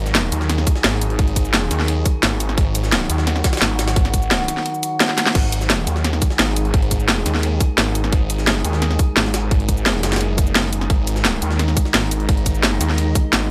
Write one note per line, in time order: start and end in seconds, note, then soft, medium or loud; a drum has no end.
0.00 0.31 G#1 loud
0.00 5.31 D#3 medium
0.00 5.31 F#3 medium
0.00 2.57 G#4 loud
0.06 snare soft
0.06 cabasa soft
0.15 snare loud
0.15 closed hi-hat medium
0.32 0.65 D#2 loud
0.32 closed hi-hat medium
0.32 cabasa medium
0.41 snare soft
0.49 snare medium
0.49 closed hi-hat medium
0.58 snare soft
0.67 kick loud
0.67 closed hi-hat medium
0.67 cabasa medium
0.76 snare soft
0.84 1.17 G#1 loud
0.84 snare loud
0.84 closed hi-hat medium
1.02 closed hi-hat medium
1.02 cabasa medium
1.10 closed hi-hat soft
1.19 1.69 G#1 loud
1.19 kick loud
1.19 closed hi-hat medium
1.28 closed hi-hat soft
1.36 kick medium
1.36 closed hi-hat medium
1.36 cabasa medium
1.45 cabasa soft
1.54 snare loud
1.54 closed hi-hat medium
1.71 2.04 D#2 loud
1.71 snare soft
1.71 closed hi-hat medium
1.71 closed hi-hat loud
1.71 cabasa medium
1.80 snare soft
1.88 closed hi-hat medium
2.06 kick loud
2.06 closed hi-hat medium
2.06 cabasa medium
2.23 2.56 G#1 loud
2.23 snare loud
2.23 closed hi-hat medium
2.40 closed hi-hat medium
2.40 cabasa medium
2.49 snare soft
2.58 3.08 G#1 medium
2.58 5.34 F#4 loud
2.58 kick loud
2.58 closed hi-hat medium
2.75 closed hi-hat medium
2.75 closed hi-hat loud
2.75 cabasa medium
2.84 snare soft
2.84 cabasa soft
2.92 snare loud
2.92 closed hi-hat medium
3.10 3.43 D#2 loud
3.10 closed hi-hat medium
3.10 closed hi-hat loud
3.10 cabasa medium
3.18 snare soft
3.27 snare medium
3.27 closed hi-hat medium
3.36 snare soft
3.44 kick loud
3.44 snare loud
3.44 closed hi-hat medium
3.44 cabasa medium
3.53 snare medium
3.53 closed hi-hat medium
3.57 snare medium
3.57 closed hi-hat medium
3.62 3.95 G#1 loud
3.62 snare loud
3.62 closed hi-hat medium
3.79 snare loud
3.79 closed hi-hat medium
3.79 cabasa medium
3.88 snare loud
3.88 closed hi-hat medium
3.96 4.47 G#1 loud
3.96 kick loud
3.96 closed hi-hat medium
3.96 closed hi-hat loud
4.05 snare soft
4.05 closed hi-hat soft
4.14 kick medium
4.14 closed hi-hat loud
4.14 closed hi-hat medium
4.14 cabasa medium
4.22 cabasa soft
4.31 snare loud
4.31 closed hi-hat medium
4.48 snare soft
4.48 closed hi-hat medium
4.48 closed hi-hat loud
4.48 cabasa medium
4.57 snare soft
4.66 closed hi-hat medium
4.74 cabasa soft
4.83 closed hi-hat medium
4.83 closed hi-hat loud
4.83 cabasa medium
5.00 snare loud
5.00 closed hi-hat medium
5.09 snare medium
5.18 snare medium
5.18 closed hi-hat loud
5.18 closed hi-hat medium
5.18 cabasa medium
5.26 snare medium
5.35 5.86 G#1 loud
5.35 13.51 D#3 medium
5.35 13.51 G#3 medium
5.35 10.88 G#4 loud
5.35 kick loud
5.35 closed hi-hat medium
5.35 crash loud
5.52 closed hi-hat loud
5.52 closed hi-hat medium
5.52 cabasa medium
5.61 snare soft
5.61 cabasa soft
5.70 snare loud
5.70 closed hi-hat medium
5.87 6.20 D#2 loud
5.87 closed hi-hat loud
5.87 closed hi-hat medium
5.87 cabasa medium
5.96 snare soft
6.04 snare medium
6.04 closed hi-hat medium
6.13 snare soft
6.22 kick loud
6.22 closed hi-hat loud
6.22 closed hi-hat medium
6.22 cabasa medium
6.30 snare soft
6.39 6.72 G#1 loud
6.39 snare loud
6.39 closed hi-hat medium
6.56 closed hi-hat medium
6.56 closed hi-hat loud
6.56 cabasa medium
6.65 closed hi-hat soft
6.74 7.24 G#1 loud
6.74 kick loud
6.74 closed hi-hat medium
6.82 closed hi-hat soft
6.91 kick medium
6.91 closed hi-hat medium
6.91 cabasa medium
7.00 cabasa soft
7.08 snare loud
7.08 closed hi-hat medium
7.26 7.59 D#2 loud
7.26 snare soft
7.26 closed hi-hat medium
7.26 closed hi-hat loud
7.26 cabasa medium
7.35 snare soft
7.43 closed hi-hat medium
7.60 kick loud
7.60 closed hi-hat loud
7.60 closed hi-hat medium
7.60 cabasa medium
7.78 8.11 G#1 loud
7.78 snare loud
7.78 closed hi-hat medium
7.95 closed hi-hat medium
7.95 cabasa medium
8.04 snare soft
8.12 8.63 G#1 medium
8.12 kick loud
8.12 closed hi-hat medium
8.30 closed hi-hat medium
8.30 cabasa medium
8.39 snare soft
8.39 cabasa soft
8.47 snare loud
8.47 closed hi-hat medium
8.65 8.98 D#2 loud
8.65 closed hi-hat medium
8.65 cabasa medium
8.73 snare soft
8.82 snare medium
8.82 closed hi-hat medium
8.91 snare soft
8.99 kick loud
8.99 closed hi-hat loud
8.99 closed hi-hat medium
8.99 cabasa medium
9.17 9.50 G#1 loud
9.17 snare loud
9.17 closed hi-hat medium
9.25 snare soft
9.34 snare loud
9.34 closed hi-hat medium
9.34 cabasa medium
9.51 10.02 G#1 loud
9.51 kick loud
9.51 closed hi-hat medium
9.60 closed hi-hat soft
9.69 kick medium
9.69 closed hi-hat medium
9.69 cabasa medium
9.77 cabasa soft
9.86 snare loud
9.86 closed hi-hat medium
10.03 10.89 F#1 loud
10.03 snare loud
10.03 snare soft
10.03 closed hi-hat medium
10.03 cabasa medium
10.12 snare medium
10.12 snare soft
10.12 closed hi-hat medium
10.16 snare loud
10.16 closed hi-hat medium
10.21 closed hi-hat medium
10.38 kick loud
10.38 closed hi-hat medium
10.38 cabasa medium
10.47 cabasa soft
10.55 snare loud
10.55 closed hi-hat medium
10.73 closed hi-hat medium
10.73 cabasa medium
10.81 snare soft
10.90 11.41 G#1 medium
10.90 13.51 D#4 medium
10.90 kick loud
10.90 closed hi-hat medium
11.07 closed hi-hat medium
11.07 cabasa medium
11.16 snare soft
11.16 cabasa soft
11.25 snare loud
11.25 closed hi-hat medium
11.42 11.75 D#2 loud
11.42 closed hi-hat medium
11.42 cabasa medium
11.51 snare soft
11.59 snare medium
11.59 closed hi-hat medium
11.68 snare soft
11.77 kick loud
11.77 closed hi-hat medium
11.77 cabasa medium
11.85 snare soft
11.94 12.27 G#1 loud
11.94 snare loud
11.94 closed hi-hat medium
12.11 closed hi-hat medium
12.11 cabasa medium
12.20 closed hi-hat soft
12.29 12.79 G#1 loud
12.29 kick loud
12.29 closed hi-hat medium
12.37 closed hi-hat soft
12.46 kick medium
12.46 closed hi-hat medium
12.46 cabasa medium
12.55 cabasa soft
12.63 snare loud
12.63 closed hi-hat medium
12.81 13.14 D#2 loud
12.81 snare soft
12.81 closed hi-hat medium
12.81 closed hi-hat loud
12.81 cabasa medium
12.89 snare soft
12.98 closed hi-hat medium
13.15 kick loud
13.15 closed hi-hat medium
13.15 closed hi-hat loud
13.15 cabasa medium
13.33 13.51 G#1 loud
13.33 snare loud
13.33 closed hi-hat medium